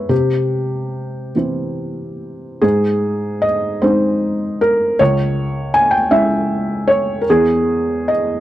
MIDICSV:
0, 0, Header, 1, 2, 480
1, 0, Start_track
1, 0, Key_signature, -4, "major"
1, 0, Tempo, 834492
1, 60, Time_signature, 6, 3, 24, 8
1, 1980, Tempo, 764331
1, 4380, Tempo, 808625
1, 5055, End_track
2, 0, Start_track
2, 0, Title_t, "Felt piano"
2, 0, Program_c, 0, 0
2, 0, Control_c, 0, 64, 127
2, 0, Note_on_c, 0, 56, 38
2, 0, Note_on_c, 0, 59, 35
2, 0, Note_on_c, 0, 64, 38
2, 0, Note_on_c, 0, 71, 55
2, 0, Note_on_c, 0, 73, 72
2, 0, Note_on_c, 0, 76, 74
2, 52, Note_on_c, 0, 48, 46
2, 53, Note_on_c, 0, 67, 59
2, 71, Control_c, 0, 64, 0
2, 72, Note_off_c, 0, 71, 0
2, 72, Note_off_c, 0, 73, 0
2, 73, Note_off_c, 0, 76, 0
2, 76, Note_off_c, 0, 56, 0
2, 76, Note_off_c, 0, 59, 0
2, 77, Note_off_c, 0, 64, 0
2, 164, Control_c, 0, 64, 127
2, 757, Note_off_c, 0, 48, 0
2, 779, Note_off_c, 0, 67, 0
2, 779, Note_on_c, 0, 52, 30
2, 784, Note_on_c, 0, 60, 32
2, 789, Note_on_c, 0, 64, 32
2, 1487, Note_off_c, 0, 52, 0
2, 1490, Note_off_c, 0, 60, 0
2, 1492, Note_off_c, 0, 64, 0
2, 1504, Note_on_c, 0, 68, 70
2, 1507, Note_on_c, 0, 44, 51
2, 1523, Control_c, 0, 64, 0
2, 1625, Control_c, 0, 64, 127
2, 1966, Note_on_c, 0, 75, 71
2, 1976, Note_off_c, 0, 68, 0
2, 2204, Note_off_c, 0, 44, 0
2, 2215, Note_on_c, 0, 72, 62
2, 2221, Note_off_c, 0, 75, 0
2, 2222, Note_on_c, 0, 56, 36
2, 2226, Note_on_c, 0, 63, 43
2, 2230, Note_on_c, 0, 60, 35
2, 2708, Note_off_c, 0, 72, 0
2, 2715, Note_on_c, 0, 70, 75
2, 2927, Note_off_c, 0, 56, 0
2, 2929, Note_off_c, 0, 63, 0
2, 2931, Note_off_c, 0, 60, 0
2, 2954, Note_on_c, 0, 73, 83
2, 2955, Note_off_c, 0, 70, 0
2, 2959, Note_on_c, 0, 37, 54
2, 2966, Control_c, 0, 64, 0
2, 3053, Control_c, 0, 64, 127
2, 3423, Note_off_c, 0, 73, 0
2, 3423, Note_on_c, 0, 80, 89
2, 3529, Note_on_c, 0, 79, 77
2, 3540, Note_off_c, 0, 80, 0
2, 3639, Note_off_c, 0, 37, 0
2, 3652, Note_off_c, 0, 79, 0
2, 3655, Note_on_c, 0, 76, 79
2, 3656, Note_on_c, 0, 61, 40
2, 3658, Note_on_c, 0, 56, 39
2, 3659, Note_on_c, 0, 64, 39
2, 4134, Note_off_c, 0, 76, 0
2, 4136, Note_on_c, 0, 73, 77
2, 4336, Note_off_c, 0, 73, 0
2, 4348, Note_on_c, 0, 70, 50
2, 4354, Note_off_c, 0, 56, 0
2, 4354, Note_off_c, 0, 61, 0
2, 4355, Note_off_c, 0, 64, 0
2, 4386, Note_off_c, 0, 70, 0
2, 4390, Control_c, 0, 64, 0
2, 4399, Note_on_c, 0, 40, 58
2, 4401, Note_on_c, 0, 68, 76
2, 4480, Control_c, 0, 64, 127
2, 4865, Note_on_c, 0, 75, 69
2, 4868, Note_off_c, 0, 68, 0
2, 5055, Note_off_c, 0, 40, 0
2, 5055, Note_off_c, 0, 75, 0
2, 5055, End_track
0, 0, End_of_file